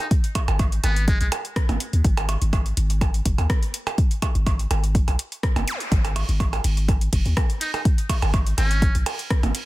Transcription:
0.11 kick, closed hi-hat
0.24 closed hi-hat
0.35 kick, closed hi-hat, percussion blips
0.48 sub bass G#1, closed hi-hat, percussion blips
0.59 kick, closed hi-hat, percussion blips
0.72 closed hi-hat
0.84 sub bass G#1, muted trumpet B3, closed hi-hat, percussion blips
0.96 closed hi-hat
1.08 muted trumpet G#3, kick, closed hi-hat
1.21 sub bass B1, muted trumpet G#3, closed hi-hat
1.32 closed hi-hat, percussion blips
1.45 closed hi-hat
1.56 kick, cross-stick, closed hi-hat
1.69 sub bass G#1, closed hi-hat, percussion blips
1.80 closed hi-hat
1.93 sub bass D#2, closed hi-hat
2.04 sub bass G#1, kick, closed hi-hat
2.17 closed hi-hat, percussion blips
2.29 closed hi-hat, percussion blips
2.41 sub bass G#1, closed hi-hat
2.53 kick, closed hi-hat, percussion blips
2.66 closed hi-hat
2.77 sub bass G#1, closed hi-hat
2.90 closed hi-hat
3.01 kick, closed hi-hat, percussion blips
3.14 closed hi-hat
3.25 sub bass F#1, kick, closed hi-hat
3.38 sub bass D#2, closed hi-hat, percussion blips
3.50 kick, cross-stick, closed hi-hat
3.63 closed hi-hat
3.74 closed hi-hat
3.87 closed hi-hat, percussion blips
3.98 kick, closed hi-hat
4.11 closed hi-hat
4.22 kick, closed hi-hat, percussion blips
4.35 sub bass G#1, closed hi-hat
4.46 kick, closed hi-hat, percussion blips
4.59 closed hi-hat
4.71 sub bass G#1, closed hi-hat, percussion blips
4.84 closed hi-hat
4.95 kick, closed hi-hat
5.08 sub bass B1, closed hi-hat, percussion blips
5.19 closed hi-hat
5.32 closed hi-hat
5.43 kick, cross-stick, closed hi-hat
5.56 sub bass F#1, closed hi-hat, percussion blips
5.68 closed hi-hat, zap
5.80 closed hi-hat
5.92 sub bass G#1, kick, closed hi-hat
6.05 closed hi-hat, percussion blips
6.16 closed hi-hat, ride, percussion blips
6.29 sub bass G#1, closed hi-hat
6.40 kick, closed hi-hat, percussion blips
6.53 closed hi-hat, percussion blips
6.64 sub bass G#1, closed hi-hat, ride
6.77 closed hi-hat
6.88 kick, closed hi-hat, percussion blips
7.01 closed hi-hat
7.13 sub bass F#1, kick, closed hi-hat, ride
7.26 sub bass D#2, closed hi-hat
7.37 kick, cross-stick, closed hi-hat, percussion blips
7.50 closed hi-hat
7.61 muted trumpet D#4, closed hi-hat, ride
7.74 muted trumpet D#4, closed hi-hat, percussion blips
7.85 kick, closed hi-hat
7.98 closed hi-hat
8.09 kick, closed hi-hat, ride, percussion blips
8.22 sub bass G#1, closed hi-hat, percussion blips
8.34 kick, closed hi-hat, percussion blips
8.47 closed hi-hat
8.58 sub bass G#1, muted trumpet C#4, closed hi-hat, ride, percussion blips
8.71 closed hi-hat
8.82 kick, closed hi-hat
8.95 sub bass B1, closed hi-hat
9.06 closed hi-hat, ride, percussion blips
9.19 closed hi-hat
9.30 kick, cross-stick, closed hi-hat
9.43 sub bass G#1, closed hi-hat, percussion blips
9.55 closed hi-hat, ride

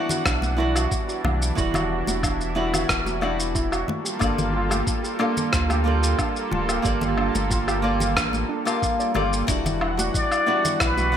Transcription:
Already playing: analog synth pad E3 D4 F#5, nylon-string guitar G3 B3 E4 F#4 D5
0.09 steel pan F#4, low conga, shaker
0.25 sub bass B1, steel pan D4, kick, cross-stick, low woodblock, shaker
0.42 high conga, shaker
0.57 nylon-string guitar G3 B3 E4 F#4 D5, steel pan E4
0.76 steel pan F#4, low woodblock, shaker
0.91 kick, shaker
1.08 steel pan F#4, shaker
1.24 sub bass B1, steel pan D4, high conga, low conga, low woodblock
1.42 shaker
1.55 sub bass E1, nylon-string guitar G3 B3 E4 F#4 D5, analog synth pad E4, steel pan E4, kick, shaker
1.74 steel pan F#4, low conga, low woodblock, shaker
2.07 sub bass E1, steel pan F#4, high conga, shaker
2.23 steel pan D4, kick, low woodblock, shaker
2.41 shaker
2.55 nylon-string guitar G3 B3 E4 F#4 D5, steel pan E4
2.73 steel pan F#4, low conga, low woodblock, shaker
2.89 sub bass E1, kick, cross-stick, shaker
3.06 steel pan F#4, high conga, shaker
3.21 nylon-string guitar G3 B3 E4 F#4 D5, steel pan D4, low woodblock
3.40 shaker
3.55 steel pan E4, kick, shaker
3.72 steel pan F#4, low woodblock, shaker
3.88 analog synth pad G3 A#3 F4 A4, high conga, low conga
4.05 steel pan G4, shaker
4.19 sub bass G1, nylon-string guitar A#3 F4 G4 A4 D5, steel pan D4, kick, low woodblock, shaker
4.38 low conga, shaker
4.53 steel pan F4
4.70 steel pan G4, high conga, low woodblock, shaker
4.87 kick, shaker
5.03 steel pan G4, shaker
5.19 nylon-string guitar A#3 F4 G4 A4 D5, steel pan D4, low woodblock
5.37 low conga, shaker
5.52 sub bass D2, steel pan F4, kick, cross-stick, shaker
5.69 steel pan G4, high conga, low woodblock, shaker
5.84 nylon-string guitar A#3 F4 G4 A4 D5
6.03 steel pan G4, shaker
6.18 steel pan D4, kick, low woodblock, shaker
6.36 shaker
6.51 sub bass D1, steel pan F4, high conga, low conga
6.69 steel pan G4, low woodblock, shaker
6.82 sub bass G1, nylon-string guitar A#3 F4 G4 A4 D5, kick, shaker
7.01 steel pan G4, low conga, shaker
7.18 steel pan D4, low woodblock
7.35 sub bass G1, high conga, shaker
7.50 steel pan F4, kick, shaker
7.68 steel pan G4, low woodblock, shaker
7.82 nylon-string guitar A#3 F4 G4 A4 D5
8.00 steel pan G4, low conga, shaker
8.16 sub bass A1, steel pan D4, kick, cross-stick, low woodblock, shaker
8.33 high conga, shaker
8.49 steel pan D4
8.65 nylon-string guitar A#3 F4 G4 F5 A5, steel pan A#4, low woodblock, shaker
8.82 kick, shaker
9.00 steel pan D5, shaker
9.14 sub bass G1, nylon-string guitar A#3 F4 G4 A4 D5, steel pan G4, high conga, low conga, low woodblock
9.33 shaker
9.47 sub bass E1, analog synth pad E3 G3 D4 F#5, nylon-string guitar G3 B3 E4 F#4 D5, steel pan D4, kick, shaker
9.66 low conga, shaker
9.81 steel pan E4, low woodblock
9.98 steel pan F#4, high conga, shaker
10.14 muted trumpet D5, kick, shaker
10.31 steel pan E4, low woodblock, shaker
10.46 nylon-string guitar G3 B3 E4 F#4 D5, steel pan D4
10.65 low conga, shaker
10.80 sub bass B1, steel pan E4, muted trumpet B4, kick, cross-stick, low woodblock, shaker
10.97 steel pan F#4, high conga, shaker
11.12 nylon-string guitar B3 E4 F#4

